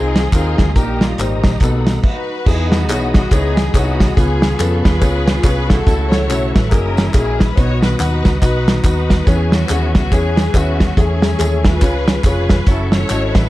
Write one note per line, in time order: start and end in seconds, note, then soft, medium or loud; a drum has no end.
0.00 0.26 C2 loud
0.00 0.19 C4 medium
0.00 0.32 C4 medium
0.00 0.19 D#4 medium
0.00 0.32 D#4 medium
0.00 0.20 F4 medium
0.00 0.19 G#4 medium
0.00 0.33 G#4 loud
0.00 0.74 G#4 medium
0.00 0.74 F5 medium
0.00 0.72 C6 medium
0.00 2.01 D#6 medium
0.16 snare loud
0.16 closed hi-hat medium
0.16 tambourine medium
0.32 0.55 D#2 medium
0.32 0.73 C4 medium
0.32 0.63 C4 medium
0.32 0.73 D#4 medium
0.32 0.63 D#4 medium
0.32 0.63 F4 medium
0.32 0.73 G#4 medium
0.32 0.63 A#4 medium
0.32 kick medium
0.32 clap medium
0.32 closed hi-hat medium
0.32 tambourine medium
0.58 0.74 D2 medium
0.58 kick medium
0.58 snare loud
0.58 closed hi-hat medium
0.58 tambourine medium
0.75 1.12 A#1 loud
0.75 1.40 A#2 medium
0.75 1.05 A#3 medium
0.75 1.17 A#3 medium
0.75 1.05 D#4 medium
0.75 1.19 D#4 medium
0.75 1.05 G4 medium
0.75 1.61 G4 medium
0.75 1.03 G4 medium
0.75 1.05 A#4 medium
0.75 1.61 D#5 medium
0.75 1.61 A#5 medium
0.75 kick loud
0.75 closed hi-hat medium
0.75 tambourine medium
1.01 1.19 F4 medium
1.01 snare loud
1.01 closed hi-hat medium
1.01 tambourine medium
1.18 1.40 G#1 loud
1.18 2.26 G3 medium
1.18 2.26 A#3 medium
1.18 1.48 A#3 medium
1.18 1.48 D#4 medium
1.18 2.04 D#4 medium
1.18 1.48 G4 medium
1.18 1.48 C5 medium
1.18 clap loud
1.18 closed hi-hat medium
1.18 tambourine loud
1.44 1.59 A#1 medium
1.44 kick loud
1.44 snare loud
1.44 closed hi-hat medium
1.44 tambourine medium
1.60 1.97 B1 medium
1.60 2.02 B2 medium
1.60 1.91 B3 medium
1.60 1.91 D#4 medium
1.60 1.91 F#4 medium
1.60 1.91 A4 medium
1.60 2.04 A4 medium
1.60 2.04 F#5 medium
1.60 2.04 B5 medium
1.60 kick loud
1.60 clap medium
1.60 closed hi-hat medium
1.60 tambourine medium
1.87 snare loud
1.87 closed hi-hat medium
1.87 tambourine medium
2.03 2.44 D#4 medium
2.03 2.44 F#4 medium
2.03 2.44 B4 medium
2.03 kick loud
2.03 crash medium
2.46 2.90 E2 loud
2.46 3.11 E3 medium
2.46 3.28 B3 medium
2.46 2.76 B3 medium
2.46 3.28 D#4 medium
2.46 2.76 D#4 medium
2.46 2.76 E4 medium
2.46 2.72 G#4 loud
2.46 5.84 G#4 medium
2.46 2.76 G#4 medium
2.46 2.76 B4 medium
2.46 4.16 D#5 medium
2.46 5.84 B5 medium
2.46 4.16 D#6 medium
2.46 kick loud
2.46 crash loud
2.46 tambourine medium
2.72 2.88 F#4 medium
2.72 snare loud
2.72 closed hi-hat medium
2.72 tambourine medium
2.89 3.26 B1 medium
2.89 3.18 B3 medium
2.89 3.18 D#4 medium
2.89 3.18 E4 medium
2.89 3.13 F#4 medium
2.89 3.18 G#4 medium
2.89 3.18 C#5 medium
2.89 clap loud
2.89 closed hi-hat loud
2.89 tambourine loud
3.14 3.30 F#4 medium
3.14 kick loud
3.14 snare loud
3.14 closed hi-hat medium
3.14 tambourine medium
3.31 3.68 C#2 medium
3.31 3.61 B3 medium
3.31 3.74 B3 medium
3.31 3.74 D#4 medium
3.31 3.61 D#4 medium
3.31 3.61 E4 medium
3.31 3.74 G#4 loud
3.31 3.61 G#4 medium
3.31 3.61 C#5 medium
3.31 kick loud
3.31 clap medium
3.31 closed hi-hat medium
3.31 tambourine medium
3.57 snare loud
3.57 closed hi-hat loud
3.57 tambourine medium
3.74 4.10 C2 loud
3.74 4.14 B3 medium
3.74 4.04 B3 medium
3.74 4.14 D#4 medium
3.74 4.04 D#4 medium
3.74 4.04 E4 medium
3.74 4.17 F#4 medium
3.74 4.04 G#4 medium
3.74 4.04 C#5 medium
3.74 kick medium
3.74 clap medium
3.74 closed hi-hat medium
3.74 tambourine medium
4.00 kick medium
4.00 snare loud
4.00 closed hi-hat medium
4.00 tambourine medium
4.15 4.53 C#2 loud
4.15 4.81 C#3 medium
4.15 4.98 B3 medium
4.15 4.46 B3 medium
4.15 4.46 C#4 medium
4.15 4.84 F4 medium
4.15 4.46 F4 medium
4.15 4.59 G#4 loud
4.15 4.46 G#4 medium
4.15 4.46 B4 medium
4.15 5.86 F5 medium
4.15 6.70 C#6 medium
4.15 kick loud
4.15 closed hi-hat medium
4.15 tambourine medium
4.42 snare loud
4.42 closed hi-hat medium
4.42 tambourine medium
4.58 4.81 F2 medium
4.58 4.88 B3 medium
4.58 4.88 C#4 medium
4.58 4.89 F4 medium
4.58 4.89 G#4 medium
4.58 4.85 A4 medium
4.58 4.88 B4 medium
4.58 clap loud
4.58 closed hi-hat medium
4.58 tambourine loud
4.84 5.00 D#2 medium
4.84 5.66 F4 medium
4.84 5.66 G#4 medium
4.84 5.42 B4 loud
4.84 kick loud
4.84 snare loud
4.84 closed hi-hat medium
4.84 tambourine medium
5.01 5.38 C#2 loud
5.01 5.30 B3 medium
5.01 5.31 C#4 medium
5.01 5.31 F4 medium
5.01 5.31 G#4 medium
5.01 5.31 C#5 medium
5.01 kick loud
5.01 clap loud
5.01 closed hi-hat medium
5.01 tambourine loud
5.28 snare loud
5.28 closed hi-hat medium
5.28 tambourine medium
5.43 5.80 C2 medium
5.43 5.73 B3 medium
5.43 5.73 C#4 medium
5.43 5.73 F4 medium
5.43 5.73 G#4 medium
5.43 5.67 B4 loud
5.43 5.73 C#5 medium
5.43 kick loud
5.43 clap medium
5.43 closed hi-hat medium
5.43 tambourine loud
5.69 6.11 E4 medium
5.69 6.51 F#4 medium
5.69 6.11 A4 loud
5.69 kick loud
5.69 snare loud
5.69 closed hi-hat medium
5.69 tambourine medium
5.87 6.30 C#2 loud
5.87 6.51 C#3 medium
5.87 6.16 A3 medium
5.87 6.16 C#4 medium
5.87 6.16 E4 medium
5.87 6.16 F#4 medium
5.87 6.16 A4 medium
5.87 6.72 A4 medium
5.87 7.56 E5 medium
5.87 6.72 F#5 medium
5.87 kick loud
5.87 closed hi-hat medium
5.87 tambourine medium
6.12 6.68 E4 medium
6.12 6.68 A4 medium
6.12 6.55 C#5 loud
6.12 snare loud
6.12 closed hi-hat medium
6.12 tambourine medium
6.29 6.52 B1 loud
6.29 6.58 A3 medium
6.29 6.59 C#4 medium
6.29 6.58 E4 medium
6.29 6.58 F#4 medium
6.29 6.58 A4 medium
6.29 clap loud
6.29 closed hi-hat medium
6.29 tambourine loud
6.55 6.70 A1 medium
6.55 6.71 B4 medium
6.55 kick loud
6.55 snare loud
6.55 closed hi-hat medium
6.55 tambourine medium
6.71 7.08 F#1 loud
6.71 7.00 A#3 medium
6.71 7.53 C#4 medium
6.71 7.00 D#4 medium
6.71 7.01 E4 medium
6.71 7.53 E4 medium
6.71 7.01 F#4 medium
6.71 7.01 G#4 medium
6.71 7.15 A#4 loud
6.71 7.57 A#4 medium
6.71 7.57 G#5 medium
6.71 9.25 D#6 medium
6.71 kick loud
6.71 clap medium
6.71 closed hi-hat medium
6.71 tambourine medium
6.97 snare loud
6.97 closed hi-hat medium
6.97 tambourine medium
7.14 7.51 A#1 medium
7.14 7.43 A#3 medium
7.14 7.44 D#4 medium
7.14 7.43 E4 medium
7.14 7.43 F#4 medium
7.14 7.43 G#4 medium
7.14 7.39 G#4 medium
7.14 kick loud
7.14 clap medium
7.14 closed hi-hat medium
7.14 tambourine medium
7.40 7.57 B4 loud
7.40 kick medium
7.40 snare loud
7.40 closed hi-hat medium
7.40 tambourine medium
7.57 7.94 B1 loud
7.57 8.22 B2 medium
7.57 7.86 B3 medium
7.57 7.86 D#4 medium
7.57 7.86 F#4 medium
7.57 8.00 F#4 medium
7.57 7.86 B4 medium
7.57 9.26 B4 medium
7.57 7.83 C#5 loud
7.57 7.86 D#5 medium
7.57 9.26 D#5 medium
7.57 9.26 F#5 medium
7.57 kick loud
7.57 closed hi-hat medium
7.57 tambourine medium
7.83 7.99 B4 loud
7.83 snare loud
7.83 closed hi-hat medium
7.83 tambourine medium
7.99 8.22 D#2 loud
7.99 8.28 B3 medium
7.99 8.28 D#4 medium
7.99 8.43 D#4 medium
7.99 8.28 F#4 medium
7.99 8.43 F#4 medium
7.99 8.29 B4 medium
7.99 8.40 B4 loud
7.99 8.28 F#5 medium
7.99 clap loud
7.99 closed hi-hat loud
7.99 tambourine loud
8.25 8.40 C#2 medium
8.25 kick loud
8.25 snare loud
8.25 closed hi-hat medium
8.25 tambourine medium
8.41 8.78 B1 medium
8.41 8.71 B3 medium
8.41 8.71 D#4 medium
8.41 8.85 D#4 medium
8.41 8.71 F#4 medium
8.41 8.85 F#4 medium
8.41 8.71 B4 medium
8.41 8.83 B4 loud
8.41 8.71 D#5 medium
8.41 kick loud
8.41 clap medium
8.41 closed hi-hat medium
8.41 tambourine medium
8.68 snare loud
8.68 closed hi-hat medium
8.68 tambourine medium
8.84 9.21 D#2 medium
8.84 9.14 B3 medium
8.84 9.13 D#4 medium
8.84 9.25 D#4 medium
8.84 9.14 F#4 medium
8.84 9.25 F#4 medium
8.84 9.14 B4 medium
8.84 9.25 B4 medium
8.84 9.14 D#5 medium
8.84 kick medium
8.84 clap medium
8.84 closed hi-hat medium
8.84 tambourine medium
9.10 kick medium
9.10 snare loud
9.10 closed hi-hat medium
9.10 tambourine medium
9.27 9.63 E2 loud
9.27 9.91 E3 medium
9.27 9.53 B3 medium
9.27 9.56 C#4 medium
9.27 9.53 C#4 medium
9.27 9.56 E4 medium
9.27 9.53 G#4 medium
9.27 9.56 G#4 medium
9.27 9.56 B4 medium
9.27 10.96 B4 medium
9.27 9.56 C#5 medium
9.27 11.80 E5 medium
9.27 12.65 G#5 medium
9.27 13.49 C#6 medium
9.27 kick loud
9.27 closed hi-hat medium
9.27 tambourine medium
9.52 10.12 B3 medium
9.52 10.12 C#4 medium
9.52 9.94 F#4 loud
9.52 snare loud
9.52 closed hi-hat medium
9.52 tambourine medium
9.69 9.96 D#2 loud
9.69 9.99 C#4 medium
9.69 9.99 E4 medium
9.69 9.99 G#4 medium
9.69 9.99 B4 medium
9.69 9.99 C#5 medium
9.69 clap loud
9.69 closed hi-hat loud
9.69 tambourine loud
9.95 10.10 C#2 medium
9.95 10.11 F#4 loud
9.95 kick loud
9.95 snare loud
9.95 closed hi-hat medium
9.95 tambourine medium
10.11 10.48 E2 medium
10.11 10.54 B3 medium
10.11 10.41 C#4 medium
10.11 10.54 C#4 medium
10.11 10.41 E4 medium
10.11 10.41 G#4 medium
10.11 10.55 G#4 loud
10.11 10.41 B4 medium
10.11 10.41 C#5 medium
10.11 kick loud
10.11 clap medium
10.11 closed hi-hat medium
10.11 tambourine medium
10.37 snare loud
10.37 closed hi-hat medium
10.37 tambourine medium
10.54 10.90 D#2 medium
10.54 10.95 B3 medium
10.54 10.83 C#4 medium
10.54 10.94 C#4 medium
10.54 10.83 E4 medium
10.54 10.97 F#4 loud
10.54 10.83 G#4 medium
10.54 10.83 B4 medium
10.54 10.83 E5 medium
10.54 kick medium
10.54 clap medium
10.54 closed hi-hat medium
10.54 tambourine medium
10.80 kick medium
10.80 snare loud
10.80 closed hi-hat medium
10.80 tambourine medium
10.97 11.33 E2 loud
10.97 11.62 E3 medium
10.97 11.81 A3 medium
10.97 11.26 C#4 medium
10.97 11.79 C#4 medium
10.97 11.26 E4 medium
10.97 11.26 G#4 medium
10.97 11.65 G#4 medium
10.97 11.26 A4 medium
10.97 11.26 C#5 medium
10.97 kick loud
10.97 closed hi-hat medium
10.97 tambourine medium
11.22 snare loud
11.22 closed hi-hat medium
11.22 tambourine medium
11.39 11.82 D#2 loud
11.39 11.68 C#4 medium
11.39 11.68 E4 medium
11.39 11.68 G#4 medium
11.39 11.69 A4 medium
11.39 11.68 C#5 medium
11.39 clap loud
11.39 closed hi-hat medium
11.39 tambourine loud
11.65 12.26 F4 medium
11.65 12.25 G#4 medium
11.65 12.25 B4 loud
11.65 kick loud
11.65 snare loud
11.65 closed hi-hat medium
11.65 tambourine medium
11.82 12.18 C#2 loud
11.82 12.47 C#3 medium
11.82 12.11 C#4 medium
11.82 12.11 F4 medium
11.82 12.11 G#4 medium
11.82 12.11 B4 medium
11.82 12.67 B4 medium
11.82 12.11 C#5 medium
11.82 12.67 F5 medium
11.82 kick medium
11.82 clap loud
11.82 closed hi-hat medium
11.82 tambourine loud
12.08 snare loud
12.08 closed hi-hat medium
12.08 tambourine medium
12.24 12.61 F1 medium
12.24 12.54 C#4 medium
12.24 12.54 F4 medium
12.24 12.65 F4 medium
12.24 12.54 G#4 medium
12.24 12.65 G#4 medium
12.24 12.54 B4 medium
12.24 12.65 B4 loud
12.24 12.54 C#5 medium
12.24 kick loud
12.24 clap medium
12.24 closed hi-hat medium
12.24 tambourine medium
12.49 kick medium
12.49 snare loud
12.49 closed hi-hat medium
12.49 tambourine medium
12.67 13.03 F#1 loud
12.67 13.49 C#4 medium
12.67 12.96 C#4 medium
12.67 12.96 E4 medium
12.67 12.93 E4 medium
12.67 12.96 F#4 medium
12.67 13.49 A4 medium
12.67 12.97 A4 medium
12.67 12.93 A4 medium
12.67 12.96 C#5 medium
12.67 13.49 E5 medium
12.67 13.49 F#5 medium
12.67 kick loud
12.67 closed hi-hat medium
12.67 tambourine medium
12.92 13.49 E4 medium
12.92 13.49 A4 medium
12.92 13.36 C#5 loud
12.92 snare loud
12.92 closed hi-hat medium
12.92 tambourine medium
13.10 13.32 G#1 medium
13.10 13.39 C#4 medium
13.10 13.39 E4 medium
13.10 13.39 F#4 medium
13.10 13.39 A4 medium
13.10 13.39 D#5 medium
13.10 clap loud
13.10 closed hi-hat medium
13.10 tambourine loud
13.35 13.49 A1 medium
13.35 13.49 B4 loud
13.35 kick loud
13.35 snare loud
13.35 closed hi-hat medium
13.35 tambourine medium